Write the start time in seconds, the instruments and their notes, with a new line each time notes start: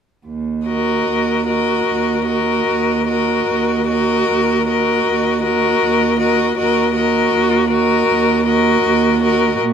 0.27 cello D#2
0.67 viola F#4, violin A#4 D#5
1.08 cello D#2
1.47 viola F#4, violin A#4 D#5
1.88 cello D#2
2.26 viola F#4, violin A#4 D#5
2.67 cello D#2
3.07 viola F#4, violin A#4 D#5
3.47 cello D#2
3.88 viola F#4, violin A#4 D#5
4.29 cello D#2
4.68 viola F#4, violin A#4 D#5
5.07 cello D#2
5.43 viola F#4, violin A#4 D#5
5.80 cello D#2
6.19 viola F#4, violin A#4 D#5
6.57 cello D#2, viola F#4, violin A#4 D#5
6.96 viola F#4, violin A#4 D#5
7.33 cello D#2
7.71 viola F#4, violin A#4 D#5
8.09 cello D#2
8.47 viola F#4, violin A#4 D#5
8.83 cello D#2
9.22 viola F#4, violin A#4 D#5
9.59 cello A#2